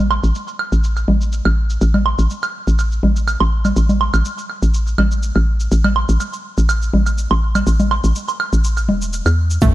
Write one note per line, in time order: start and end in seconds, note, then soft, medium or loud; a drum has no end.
0.00 0.19 A1 medium
0.11 high woodblock soft
0.11 low woodblock medium
0.24 0.33 A1 medium
0.24 cabasa soft
0.35 cabasa soft
0.48 cabasa soft
0.59 high woodblock medium
0.72 1.04 A1 medium
0.72 cabasa soft
0.84 cabasa soft
0.97 cabasa soft
0.97 high woodblock soft
1.08 1.41 A1 medium
1.08 low conga medium
1.21 cabasa soft
1.33 cabasa soft
1.45 1.78 A1 medium
1.45 high woodblock medium
1.70 cabasa soft
1.81 2.15 A1 loud
1.81 cabasa soft
1.94 low conga medium
1.94 high woodblock soft
2.06 low woodblock medium
2.19 2.28 A1 medium
2.19 cabasa soft
2.30 cabasa soft
2.43 cabasa soft
2.43 high woodblock medium
2.67 3.00 A1 medium
2.67 cabasa soft
2.79 cabasa soft
2.79 high woodblock soft
2.92 cabasa soft
3.03 3.36 A1 medium
3.03 low conga medium
3.16 cabasa soft
3.28 cabasa soft
3.28 high woodblock medium
3.40 3.73 A1 medium
3.40 low woodblock medium
3.65 low conga medium
3.65 cabasa soft
3.65 high woodblock soft
3.76 4.10 A1 loud
3.76 cabasa soft
3.89 low conga medium
3.89 cabasa soft
4.01 low woodblock medium
4.14 4.23 A1 medium
4.14 cabasa soft
4.14 high woodblock medium
4.25 cabasa medium
4.38 cabasa soft
4.50 high woodblock soft
4.63 4.95 A1 medium
4.63 cabasa soft
4.74 cabasa medium
4.87 cabasa soft
4.98 5.32 A1 medium
4.98 low conga medium
4.98 high woodblock medium
5.11 cabasa soft
5.23 cabasa soft
5.36 5.68 A1 loud
5.36 high woodblock soft
5.60 cabasa soft
5.72 6.05 A1 loud
5.72 cabasa medium
5.84 low conga medium
5.84 high woodblock medium
5.96 low woodblock medium
6.09 6.18 A1 medium
6.09 cabasa soft
6.20 cabasa medium
6.20 high woodblock soft
6.33 cabasa soft
6.58 6.90 A1 medium
6.58 cabasa soft
6.69 cabasa medium
6.69 high woodblock medium
6.82 cabasa soft
6.94 7.27 A1 medium
6.94 low conga medium
7.06 cabasa soft
7.06 high woodblock soft
7.18 cabasa medium
7.31 7.63 A1 loud
7.31 low woodblock medium
7.55 low conga medium
7.55 cabasa soft
7.55 high woodblock medium
7.67 8.00 A1 loud
7.67 cabasa medium
7.80 low conga medium
7.80 cabasa soft
7.91 high woodblock soft
7.91 low woodblock medium
8.04 8.13 A1 medium
8.04 cabasa soft
8.16 cabasa medium
8.28 cabasa soft
8.28 low woodblock soft
8.40 high woodblock medium
8.53 8.90 A1 medium
8.53 cabasa soft
8.64 cabasa medium
8.77 cabasa soft
8.77 high woodblock soft
8.89 9.22 E1 medium
8.89 low conga medium
9.02 cabasa soft
9.13 cabasa medium
9.26 9.58 E2 medium
9.26 cabasa soft
9.26 high woodblock medium
9.50 cabasa soft
9.62 9.74 A1 loud
9.62 9.64 A3 medium
9.62 kick loud
9.62 closed hi-hat medium
9.62 impact medium
9.62 cabasa medium